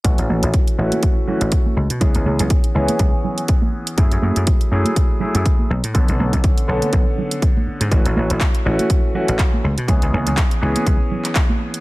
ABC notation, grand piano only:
X:1
M:4/4
L:1/8
Q:"Swing 16ths" 1/4=122
K:A
V:1 name="Grand piano"
[E,A,CF]3 [E,A,CF]2 [E,A,CF]2 z | [E,B,CG]3 [E,B,CG]4- [E,B,CG] | [F,A,EG]3 [F,A,EG]2 [F,A,EG]2 z | [D,B,CA]3 [D,B,CA]4- [D,B,CA] |
[E,A,CF]3 [E,A,CF]2 [E,A,CF]2 z | [E,B,CG]3 [E,B,CG]4- [E,B,CG] |]